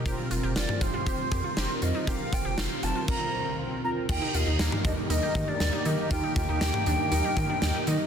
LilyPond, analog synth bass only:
\new Staff \with { instrumentName = "Analog synth bass" } { \clef bass \time 4/4 \key ees \lydian \tempo 4 = 119 f,,16 r16 f,,16 f,,16 f,,16 r16 f,,16 r16 f,,16 r16 f,16 r16 f,,16 r16 f,16 r16 | f,,16 r16 f,,16 f,,16 f,,16 r16 f,,16 r2 r16 | ees,16 r16 ees,16 ees,16 ees,16 r16 ees,16 r16 ees,16 r16 ees16 r16 ees,16 r16 ees16 r16 | ees,16 r16 ees,16 ees,16 ees,16 r16 ees,16 r16 ees,16 r16 ees16 r16 ees,16 r16 ees16 r16 | }